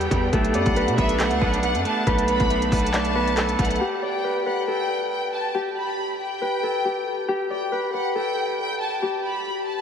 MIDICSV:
0, 0, Header, 1, 7, 480
1, 0, Start_track
1, 0, Tempo, 434783
1, 362, Time_signature, 4, 2, 24, 8
1, 10834, End_track
2, 0, Start_track
2, 0, Title_t, "Violin section"
2, 0, Program_c, 0, 48
2, 0, Note_on_c, 0, 79, 92
2, 318, Note_off_c, 0, 79, 0
2, 603, Note_on_c, 0, 78, 79
2, 1054, Note_off_c, 0, 78, 0
2, 1079, Note_on_c, 0, 76, 93
2, 1309, Note_off_c, 0, 76, 0
2, 1322, Note_on_c, 0, 78, 89
2, 1774, Note_off_c, 0, 78, 0
2, 1802, Note_on_c, 0, 78, 99
2, 2030, Note_off_c, 0, 78, 0
2, 2043, Note_on_c, 0, 81, 82
2, 2270, Note_off_c, 0, 81, 0
2, 2521, Note_on_c, 0, 83, 83
2, 2973, Note_off_c, 0, 83, 0
2, 3002, Note_on_c, 0, 81, 86
2, 3918, Note_off_c, 0, 81, 0
2, 3961, Note_on_c, 0, 78, 89
2, 4190, Note_off_c, 0, 78, 0
2, 4443, Note_on_c, 0, 79, 74
2, 4894, Note_off_c, 0, 79, 0
2, 4920, Note_on_c, 0, 78, 75
2, 5149, Note_off_c, 0, 78, 0
2, 5162, Note_on_c, 0, 79, 93
2, 5614, Note_off_c, 0, 79, 0
2, 5642, Note_on_c, 0, 79, 77
2, 5870, Note_off_c, 0, 79, 0
2, 5885, Note_on_c, 0, 81, 67
2, 6112, Note_off_c, 0, 81, 0
2, 6363, Note_on_c, 0, 83, 77
2, 6814, Note_off_c, 0, 83, 0
2, 6842, Note_on_c, 0, 79, 86
2, 7998, Note_off_c, 0, 79, 0
2, 8281, Note_on_c, 0, 79, 80
2, 8733, Note_off_c, 0, 79, 0
2, 8761, Note_on_c, 0, 78, 81
2, 8990, Note_off_c, 0, 78, 0
2, 9002, Note_on_c, 0, 79, 90
2, 9453, Note_off_c, 0, 79, 0
2, 9485, Note_on_c, 0, 79, 97
2, 9712, Note_off_c, 0, 79, 0
2, 9724, Note_on_c, 0, 81, 72
2, 9951, Note_off_c, 0, 81, 0
2, 10205, Note_on_c, 0, 83, 77
2, 10655, Note_off_c, 0, 83, 0
2, 10684, Note_on_c, 0, 81, 84
2, 10834, Note_off_c, 0, 81, 0
2, 10834, End_track
3, 0, Start_track
3, 0, Title_t, "Harp"
3, 0, Program_c, 1, 46
3, 0, Note_on_c, 1, 67, 80
3, 0, Note_on_c, 1, 69, 87
3, 0, Note_on_c, 1, 71, 90
3, 358, Note_off_c, 1, 69, 0
3, 363, Note_on_c, 1, 69, 101
3, 603, Note_on_c, 1, 74, 93
3, 839, Note_off_c, 1, 71, 0
3, 843, Note_on_c, 1, 71, 90
3, 1080, Note_off_c, 1, 71, 0
3, 1084, Note_on_c, 1, 71, 81
3, 1319, Note_off_c, 1, 69, 0
3, 1323, Note_on_c, 1, 69, 79
3, 2278, Note_off_c, 1, 71, 0
3, 2282, Note_on_c, 1, 71, 101
3, 2482, Note_off_c, 1, 67, 0
3, 2641, Note_off_c, 1, 74, 0
3, 3242, Note_on_c, 1, 74, 89
3, 3479, Note_off_c, 1, 71, 0
3, 3484, Note_on_c, 1, 71, 84
3, 3717, Note_off_c, 1, 69, 0
3, 3721, Note_on_c, 1, 69, 80
3, 4202, Note_on_c, 1, 67, 100
3, 4437, Note_off_c, 1, 74, 0
3, 4442, Note_on_c, 1, 74, 86
3, 4678, Note_off_c, 1, 71, 0
3, 4683, Note_on_c, 1, 71, 81
3, 4920, Note_off_c, 1, 71, 0
3, 4924, Note_on_c, 1, 71, 81
3, 5156, Note_off_c, 1, 69, 0
3, 5161, Note_on_c, 1, 69, 78
3, 6117, Note_off_c, 1, 67, 0
3, 6122, Note_on_c, 1, 67, 104
3, 6480, Note_off_c, 1, 74, 0
3, 7077, Note_off_c, 1, 71, 0
3, 7082, Note_on_c, 1, 71, 84
3, 7316, Note_off_c, 1, 69, 0
3, 7320, Note_on_c, 1, 69, 80
3, 7557, Note_off_c, 1, 67, 0
3, 7562, Note_on_c, 1, 67, 83
3, 8036, Note_off_c, 1, 67, 0
3, 8041, Note_on_c, 1, 67, 102
3, 8282, Note_on_c, 1, 74, 88
3, 8517, Note_off_c, 1, 71, 0
3, 8522, Note_on_c, 1, 71, 88
3, 8758, Note_off_c, 1, 71, 0
3, 8762, Note_on_c, 1, 71, 77
3, 8997, Note_off_c, 1, 69, 0
3, 9001, Note_on_c, 1, 69, 75
3, 9958, Note_off_c, 1, 67, 0
3, 9962, Note_on_c, 1, 67, 98
3, 10320, Note_off_c, 1, 74, 0
3, 10834, Note_off_c, 1, 67, 0
3, 10834, Note_off_c, 1, 69, 0
3, 10834, Note_off_c, 1, 71, 0
3, 10834, End_track
4, 0, Start_track
4, 0, Title_t, "Woodwind section"
4, 0, Program_c, 2, 71
4, 0, Note_on_c, 2, 52, 83
4, 0, Note_on_c, 2, 59, 72
4, 0, Note_on_c, 2, 67, 91
4, 176, Note_off_c, 2, 52, 0
4, 176, Note_off_c, 2, 67, 0
4, 363, Note_on_c, 2, 57, 82
4, 364, Note_on_c, 2, 62, 91
4, 4159, Note_off_c, 2, 59, 0
4, 4164, Note_off_c, 2, 57, 0
4, 4165, Note_off_c, 2, 62, 0
4, 10834, End_track
5, 0, Start_track
5, 0, Title_t, "Clean electric guitar"
5, 0, Program_c, 3, 27
5, 0, Note_on_c, 3, 55, 94
5, 0, Note_on_c, 3, 59, 87
5, 111, Note_off_c, 3, 55, 0
5, 125, Note_on_c, 3, 55, 75
5, 360, Note_off_c, 3, 55, 0
5, 362, Note_off_c, 3, 59, 0
5, 365, Note_on_c, 3, 57, 98
5, 604, Note_on_c, 3, 59, 76
5, 830, Note_off_c, 3, 57, 0
5, 843, Note_on_c, 3, 57, 86
5, 1073, Note_off_c, 3, 59, 0
5, 1086, Note_on_c, 3, 59, 79
5, 1310, Note_off_c, 3, 57, 0
5, 1323, Note_on_c, 3, 57, 88
5, 1548, Note_off_c, 3, 59, 0
5, 1562, Note_on_c, 3, 59, 84
5, 1789, Note_off_c, 3, 59, 0
5, 1802, Note_on_c, 3, 59, 82
5, 2032, Note_off_c, 3, 57, 0
5, 2046, Note_on_c, 3, 57, 80
5, 2271, Note_off_c, 3, 57, 0
5, 2284, Note_on_c, 3, 57, 103
5, 2511, Note_off_c, 3, 59, 0
5, 2525, Note_on_c, 3, 59, 77
5, 2748, Note_off_c, 3, 57, 0
5, 2761, Note_on_c, 3, 57, 82
5, 2990, Note_off_c, 3, 59, 0
5, 3004, Note_on_c, 3, 59, 82
5, 3229, Note_off_c, 3, 57, 0
5, 3242, Note_on_c, 3, 57, 83
5, 3470, Note_off_c, 3, 59, 0
5, 3483, Note_on_c, 3, 59, 86
5, 3710, Note_off_c, 3, 59, 0
5, 3723, Note_on_c, 3, 59, 86
5, 3948, Note_off_c, 3, 57, 0
5, 3961, Note_on_c, 3, 57, 78
5, 4202, Note_off_c, 3, 57, 0
5, 4203, Note_off_c, 3, 59, 0
5, 10834, End_track
6, 0, Start_track
6, 0, Title_t, "808-style bass"
6, 0, Program_c, 4, 38
6, 122, Note_on_c, 4, 40, 104
6, 353, Note_off_c, 4, 40, 0
6, 362, Note_on_c, 4, 35, 103
6, 602, Note_on_c, 4, 42, 100
6, 618, Note_off_c, 4, 35, 0
6, 723, Note_off_c, 4, 42, 0
6, 730, Note_on_c, 4, 35, 113
6, 969, Note_on_c, 4, 47, 99
6, 986, Note_off_c, 4, 35, 0
6, 1077, Note_off_c, 4, 47, 0
6, 1082, Note_on_c, 4, 35, 111
6, 1449, Note_on_c, 4, 38, 100
6, 1466, Note_off_c, 4, 35, 0
6, 1557, Note_off_c, 4, 38, 0
6, 1562, Note_on_c, 4, 35, 104
6, 1930, Note_on_c, 4, 42, 98
6, 1946, Note_off_c, 4, 35, 0
6, 2037, Note_off_c, 4, 42, 0
6, 2282, Note_on_c, 4, 35, 112
6, 2635, Note_off_c, 4, 35, 0
6, 2650, Note_on_c, 4, 35, 107
6, 2989, Note_off_c, 4, 35, 0
6, 3002, Note_on_c, 4, 35, 110
6, 3924, Note_off_c, 4, 35, 0
6, 3962, Note_on_c, 4, 35, 104
6, 4193, Note_off_c, 4, 35, 0
6, 10834, End_track
7, 0, Start_track
7, 0, Title_t, "Drums"
7, 10, Note_on_c, 9, 42, 61
7, 120, Note_off_c, 9, 42, 0
7, 122, Note_on_c, 9, 36, 95
7, 125, Note_on_c, 9, 42, 80
7, 233, Note_off_c, 9, 36, 0
7, 236, Note_off_c, 9, 42, 0
7, 362, Note_on_c, 9, 36, 116
7, 363, Note_on_c, 9, 42, 68
7, 473, Note_off_c, 9, 36, 0
7, 473, Note_off_c, 9, 42, 0
7, 491, Note_on_c, 9, 42, 63
7, 596, Note_off_c, 9, 42, 0
7, 596, Note_on_c, 9, 42, 94
7, 706, Note_off_c, 9, 42, 0
7, 727, Note_on_c, 9, 42, 50
7, 730, Note_on_c, 9, 36, 98
7, 837, Note_off_c, 9, 42, 0
7, 840, Note_off_c, 9, 36, 0
7, 843, Note_on_c, 9, 42, 77
7, 953, Note_off_c, 9, 42, 0
7, 972, Note_on_c, 9, 42, 55
7, 1081, Note_on_c, 9, 36, 96
7, 1082, Note_off_c, 9, 42, 0
7, 1085, Note_on_c, 9, 42, 74
7, 1192, Note_off_c, 9, 36, 0
7, 1196, Note_off_c, 9, 42, 0
7, 1205, Note_on_c, 9, 42, 90
7, 1315, Note_off_c, 9, 42, 0
7, 1322, Note_on_c, 9, 39, 114
7, 1323, Note_on_c, 9, 42, 91
7, 1432, Note_off_c, 9, 39, 0
7, 1433, Note_off_c, 9, 42, 0
7, 1443, Note_on_c, 9, 42, 54
7, 1553, Note_off_c, 9, 42, 0
7, 1562, Note_on_c, 9, 36, 91
7, 1672, Note_off_c, 9, 36, 0
7, 1696, Note_on_c, 9, 42, 56
7, 1800, Note_off_c, 9, 42, 0
7, 1800, Note_on_c, 9, 42, 70
7, 1910, Note_off_c, 9, 42, 0
7, 1930, Note_on_c, 9, 42, 60
7, 2040, Note_off_c, 9, 42, 0
7, 2045, Note_on_c, 9, 42, 77
7, 2156, Note_off_c, 9, 42, 0
7, 2282, Note_on_c, 9, 36, 117
7, 2283, Note_on_c, 9, 42, 67
7, 2393, Note_off_c, 9, 36, 0
7, 2393, Note_off_c, 9, 42, 0
7, 2411, Note_on_c, 9, 42, 64
7, 2516, Note_off_c, 9, 42, 0
7, 2516, Note_on_c, 9, 42, 93
7, 2627, Note_off_c, 9, 42, 0
7, 2647, Note_on_c, 9, 42, 48
7, 2650, Note_on_c, 9, 36, 98
7, 2757, Note_off_c, 9, 42, 0
7, 2761, Note_off_c, 9, 36, 0
7, 2764, Note_on_c, 9, 42, 77
7, 2874, Note_off_c, 9, 42, 0
7, 2893, Note_on_c, 9, 42, 55
7, 3002, Note_on_c, 9, 36, 97
7, 3003, Note_off_c, 9, 42, 0
7, 3003, Note_on_c, 9, 42, 45
7, 3007, Note_on_c, 9, 46, 80
7, 3083, Note_off_c, 9, 42, 0
7, 3083, Note_on_c, 9, 42, 60
7, 3113, Note_off_c, 9, 36, 0
7, 3117, Note_off_c, 9, 46, 0
7, 3163, Note_off_c, 9, 42, 0
7, 3163, Note_on_c, 9, 42, 74
7, 3243, Note_on_c, 9, 39, 116
7, 3244, Note_off_c, 9, 42, 0
7, 3244, Note_on_c, 9, 42, 95
7, 3354, Note_off_c, 9, 39, 0
7, 3354, Note_off_c, 9, 42, 0
7, 3364, Note_on_c, 9, 42, 57
7, 3474, Note_off_c, 9, 42, 0
7, 3616, Note_on_c, 9, 42, 56
7, 3720, Note_off_c, 9, 42, 0
7, 3720, Note_on_c, 9, 42, 72
7, 3723, Note_on_c, 9, 39, 104
7, 3830, Note_off_c, 9, 42, 0
7, 3834, Note_off_c, 9, 39, 0
7, 3850, Note_on_c, 9, 42, 58
7, 3961, Note_off_c, 9, 42, 0
7, 3962, Note_on_c, 9, 36, 95
7, 3963, Note_on_c, 9, 42, 75
7, 4027, Note_off_c, 9, 42, 0
7, 4027, Note_on_c, 9, 42, 69
7, 4073, Note_off_c, 9, 36, 0
7, 4090, Note_off_c, 9, 42, 0
7, 4090, Note_on_c, 9, 42, 56
7, 4146, Note_off_c, 9, 42, 0
7, 4146, Note_on_c, 9, 42, 46
7, 4257, Note_off_c, 9, 42, 0
7, 10834, End_track
0, 0, End_of_file